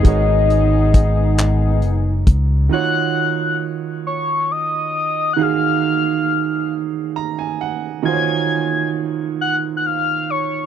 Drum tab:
HH |xxxxxx|------|------|------|
CP |---x--|------|------|------|
BD |o-o--o|------|------|------|